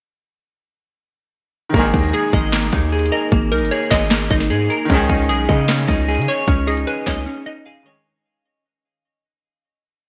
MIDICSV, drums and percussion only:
0, 0, Header, 1, 2, 480
1, 0, Start_track
1, 0, Tempo, 394737
1, 2116, Time_signature, 4, 2, 24, 8
1, 12262, End_track
2, 0, Start_track
2, 0, Title_t, "Drums"
2, 2115, Note_on_c, 9, 42, 88
2, 2116, Note_on_c, 9, 36, 122
2, 2237, Note_off_c, 9, 42, 0
2, 2238, Note_off_c, 9, 36, 0
2, 2356, Note_on_c, 9, 36, 97
2, 2356, Note_on_c, 9, 42, 83
2, 2416, Note_off_c, 9, 42, 0
2, 2416, Note_on_c, 9, 42, 68
2, 2476, Note_off_c, 9, 42, 0
2, 2476, Note_on_c, 9, 42, 58
2, 2478, Note_off_c, 9, 36, 0
2, 2536, Note_off_c, 9, 42, 0
2, 2536, Note_on_c, 9, 42, 45
2, 2594, Note_off_c, 9, 42, 0
2, 2594, Note_on_c, 9, 42, 83
2, 2716, Note_off_c, 9, 42, 0
2, 2836, Note_on_c, 9, 36, 105
2, 2838, Note_on_c, 9, 42, 89
2, 2957, Note_off_c, 9, 36, 0
2, 2960, Note_off_c, 9, 42, 0
2, 3075, Note_on_c, 9, 42, 86
2, 3076, Note_on_c, 9, 38, 116
2, 3089, Note_on_c, 9, 39, 96
2, 3197, Note_off_c, 9, 38, 0
2, 3197, Note_off_c, 9, 42, 0
2, 3210, Note_off_c, 9, 39, 0
2, 3311, Note_on_c, 9, 42, 93
2, 3316, Note_on_c, 9, 36, 99
2, 3433, Note_off_c, 9, 42, 0
2, 3438, Note_off_c, 9, 36, 0
2, 3556, Note_on_c, 9, 42, 47
2, 3636, Note_off_c, 9, 42, 0
2, 3636, Note_on_c, 9, 42, 62
2, 3716, Note_off_c, 9, 42, 0
2, 3716, Note_on_c, 9, 42, 79
2, 3838, Note_off_c, 9, 42, 0
2, 4036, Note_on_c, 9, 36, 119
2, 4036, Note_on_c, 9, 42, 88
2, 4157, Note_off_c, 9, 42, 0
2, 4158, Note_off_c, 9, 36, 0
2, 4276, Note_on_c, 9, 42, 68
2, 4356, Note_off_c, 9, 42, 0
2, 4356, Note_on_c, 9, 42, 68
2, 4436, Note_off_c, 9, 42, 0
2, 4436, Note_on_c, 9, 42, 65
2, 4514, Note_off_c, 9, 42, 0
2, 4514, Note_on_c, 9, 42, 84
2, 4636, Note_off_c, 9, 42, 0
2, 4755, Note_on_c, 9, 36, 100
2, 4755, Note_on_c, 9, 38, 95
2, 4758, Note_on_c, 9, 42, 89
2, 4768, Note_on_c, 9, 39, 74
2, 4877, Note_off_c, 9, 36, 0
2, 4877, Note_off_c, 9, 38, 0
2, 4880, Note_off_c, 9, 42, 0
2, 4890, Note_off_c, 9, 39, 0
2, 4994, Note_on_c, 9, 42, 83
2, 4995, Note_on_c, 9, 38, 120
2, 5008, Note_on_c, 9, 39, 94
2, 5116, Note_off_c, 9, 42, 0
2, 5117, Note_off_c, 9, 38, 0
2, 5130, Note_off_c, 9, 39, 0
2, 5236, Note_on_c, 9, 36, 101
2, 5355, Note_on_c, 9, 38, 66
2, 5358, Note_off_c, 9, 36, 0
2, 5474, Note_on_c, 9, 42, 74
2, 5477, Note_off_c, 9, 38, 0
2, 5595, Note_off_c, 9, 42, 0
2, 5717, Note_on_c, 9, 42, 82
2, 5839, Note_off_c, 9, 42, 0
2, 5955, Note_on_c, 9, 42, 86
2, 5956, Note_on_c, 9, 36, 117
2, 6077, Note_off_c, 9, 36, 0
2, 6077, Note_off_c, 9, 42, 0
2, 6196, Note_on_c, 9, 36, 94
2, 6196, Note_on_c, 9, 42, 83
2, 6256, Note_off_c, 9, 42, 0
2, 6256, Note_on_c, 9, 42, 72
2, 6316, Note_off_c, 9, 42, 0
2, 6316, Note_on_c, 9, 42, 57
2, 6317, Note_off_c, 9, 36, 0
2, 6376, Note_off_c, 9, 42, 0
2, 6376, Note_on_c, 9, 42, 47
2, 6434, Note_off_c, 9, 42, 0
2, 6434, Note_on_c, 9, 42, 86
2, 6556, Note_off_c, 9, 42, 0
2, 6675, Note_on_c, 9, 36, 98
2, 6678, Note_on_c, 9, 42, 86
2, 6797, Note_off_c, 9, 36, 0
2, 6800, Note_off_c, 9, 42, 0
2, 6915, Note_on_c, 9, 38, 120
2, 6915, Note_on_c, 9, 42, 86
2, 6928, Note_on_c, 9, 39, 95
2, 7036, Note_off_c, 9, 42, 0
2, 7037, Note_off_c, 9, 38, 0
2, 7050, Note_off_c, 9, 39, 0
2, 7152, Note_on_c, 9, 42, 97
2, 7156, Note_on_c, 9, 36, 99
2, 7273, Note_off_c, 9, 42, 0
2, 7278, Note_off_c, 9, 36, 0
2, 7396, Note_on_c, 9, 42, 48
2, 7477, Note_off_c, 9, 42, 0
2, 7477, Note_on_c, 9, 42, 62
2, 7556, Note_off_c, 9, 42, 0
2, 7556, Note_on_c, 9, 42, 80
2, 7678, Note_off_c, 9, 42, 0
2, 7875, Note_on_c, 9, 42, 90
2, 7876, Note_on_c, 9, 36, 121
2, 7997, Note_off_c, 9, 36, 0
2, 7997, Note_off_c, 9, 42, 0
2, 8116, Note_on_c, 9, 42, 81
2, 8120, Note_on_c, 9, 46, 90
2, 8235, Note_off_c, 9, 42, 0
2, 8235, Note_on_c, 9, 42, 46
2, 8242, Note_off_c, 9, 46, 0
2, 8354, Note_off_c, 9, 42, 0
2, 8354, Note_on_c, 9, 42, 84
2, 8476, Note_off_c, 9, 42, 0
2, 8594, Note_on_c, 9, 38, 96
2, 8595, Note_on_c, 9, 36, 100
2, 8597, Note_on_c, 9, 42, 84
2, 8607, Note_on_c, 9, 39, 77
2, 8716, Note_off_c, 9, 36, 0
2, 8716, Note_off_c, 9, 38, 0
2, 8719, Note_off_c, 9, 42, 0
2, 8729, Note_off_c, 9, 39, 0
2, 12262, End_track
0, 0, End_of_file